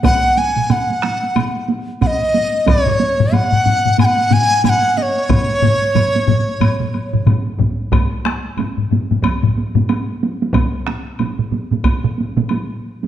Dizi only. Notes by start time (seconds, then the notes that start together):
0.04 F#5
0.38 G#5
0.71 F#5
2.02 F#5
2.07 D#5
2.68 C#5
3.34 F#5
4.00 G#5
4.05 F#5
4.33 G#5
4.65 G#5
4.69 F#5
4.97 D#5
5.02 C#5